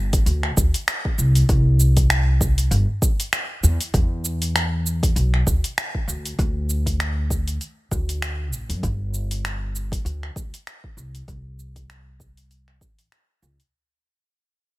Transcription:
Already playing: G1
0.13 kick, open hi-hat, cabasa
0.26 D2, open hi-hat, cabasa
0.43 finger snap
0.57 D2, kick, cabasa
0.74 open hi-hat, cabasa
0.88 finger snap, open hi-hat, cabasa
1.05 kick
1.18 C2, cabasa
1.35 open hi-hat, cabasa
1.49 C2, kick, open hi-hat, cabasa
1.80 cabasa
1.97 kick, open hi-hat, cabasa
2.10 finger snap, open hi-hat, cabasa
2.41 kick, cabasa
2.58 open hi-hat, cabasa
2.71 G1, open hi-hat, cabasa
3.02 kick, cabasa
3.20 open hi-hat, cabasa
3.33 finger snap, open hi-hat, cabasa
3.63 E2, cabasa
3.81 open hi-hat, cabasa
3.94 E2, kick, open hi-hat, cabasa
4.25 cabasa
4.42 open hi-hat, cabasa
4.56 finger snap, open hi-hat, cabasa
4.87 cabasa
5.03 kick, open hi-hat, cabasa
5.16 B1, open hi-hat, cabasa
5.34 finger snap
5.47 D2, kick, cabasa
5.64 open hi-hat, cabasa
5.78 finger snap, open hi-hat, cabasa
5.95 kick
6.08 D2, cabasa
6.26 open hi-hat, cabasa
6.39 D2, kick, open hi-hat, cabasa
6.70 cabasa
6.86 kick, open hi-hat, cabasa
7.00 finger snap, open hi-hat, cabasa
7.30 kick, cabasa
7.48 open hi-hat, cabasa
7.61 open hi-hat, cabasa
7.91 D2, kick, cabasa
8.09 open hi-hat, cabasa
8.22 finger snap, open hi-hat, cabasa
8.52 A1, cabasa
8.69 F#2, open hi-hat, cabasa
8.83 G1, kick, open hi-hat, cabasa
9.14 cabasa
9.31 open hi-hat, cabasa
9.45 finger snap, open hi-hat, cabasa
9.76 cabasa
9.92 kick, open hi-hat, cabasa
10.05 D2, open hi-hat, cabasa
10.23 finger snap
10.36 D2, kick, cabasa
10.54 open hi-hat, cabasa
10.67 finger snap, open hi-hat, cabasa
10.84 kick
10.97 C2, cabasa
11.15 open hi-hat, cabasa
11.28 C2, kick, open hi-hat, cabasa
11.60 cabasa
11.76 kick, open hi-hat, cabasa
11.90 finger snap, open hi-hat, cabasa
12.20 kick, cabasa
12.37 open hi-hat, cabasa
12.51 open hi-hat, cabasa
12.68 finger snap
12.81 A1, kick, cabasa
12.99 open hi-hat, cabasa
13.12 finger snap, open hi-hat, cabasa
13.42 C#2, cabasa
13.60 open hi-hat, cabasa

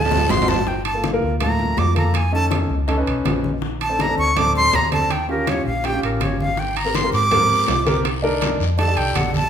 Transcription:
Already playing: D2 A5
0.05 high timbale
0.11 low bongo, low conga
0.18 low timbale
0.29 G1 C4 D#4 F#4 C6, low bongo, low conga, low timbale, short guiro
0.42 low timbale
0.48 A5, low bongo, low conga, short guiro
0.54 low timbale
0.67 G5, high bongo, high conga
0.85 A5, high bongo, high conga, high timbale
0.94 A#3 F4 A4
1.04 high bongo, high conga, high timbale
1.13 A#3 F4 A#4
1.22 D2, high conga
1.40 A3 A#3 F4 A#5, high bongo, high conga, low conga, high timbale
1.59 high bongo, high conga, low conga
1.77 F2 D6, high bongo, low bongo, high conga, high timbale, low timbale
1.95 A#3 F4 A4 A#5, high bongo, high conga, high timbale
2.14 G#5, high bongo, high conga, high timbale
2.32 C#4 D#4 A4 A5, high bongo, high conga
2.51 high bongo, high conga, high timbale
2.69 C#2, high conga
2.87 C#4 D#4 A4, high bongo, high conga, high timbale
2.97 C#4 D#4 B4
3.06 B1, high bongo, high conga, high timbale
3.25 A#1, high bongo, low bongo, high conga, high timbale, low timbale
3.44 high bongo, high conga
3.62 high bongo, high conga
3.81 A5, high bongo, high conga, high timbale
3.89 C4 D4 A4
3.99 A#5, high bongo, high conga, high timbale
4.08 C4 D4 A4
4.18 D2 C#6, high conga
4.36 C4 D4 A4 D6, high bongo, high conga, low conga, high timbale
4.55 C6, high bongo, high conga, low conga
4.73 D#2 A#5, high bongo, low bongo, high timbale
4.91 C4 D4 A4 A5, high bongo, high conga, high timbale
5.10 G5, high bongo, high conga, high timbale
5.28 C#4 F4 G4 A#4, high bongo, high conga
5.47 C#5, high bongo, high conga, high timbale
5.66 A#1 F5, high conga
5.84 C#4 F4 G4 G5, high bongo, high conga, high timbale
5.93 C#4 F4 G4
6.03 A1 A#4, high bongo, high conga, high timbale
6.21 G#1 C#5, high bongo, low bongo, high conga, high timbale
6.39 F5, high bongo, high conga
6.57 G5, high bongo, high conga, long guiro
6.76 A#5, high bongo, high conga, high timbale
6.85 C4 G4 A#4
6.95 C6, high bongo, high conga, high timbale, short guiro
7.03 C4 G4 A#4
7.13 G#2 D6, high conga, short guiro
7.31 C4 G4 A#4, high bongo, high conga, low conga, high timbale, long guiro
7.50 high bongo, high conga
7.68 C2, high bongo, low bongo, high conga, high timbale, low timbale, short guiro
7.85 C4 G4 A#4, high bongo, high conga, high timbale, short guiro
8.05 high bongo, high conga, high timbale, long guiro
8.22 D4 D#4 A#4, high bongo, high conga
8.42 high bongo, high conga, high timbale, short guiro
8.60 F2, high conga, short guiro
8.78 D4 D#4 G4 A4 A5, high bongo, high conga, high timbale, long guiro
8.87 D4 D#4 G4 A4
8.97 C2 G5, high bongo, high conga, high timbale
9.15 A#1 F#5, high bongo, low bongo, high conga, high timbale, short guiro
9.34 A5, high bongo, high conga, short guiro

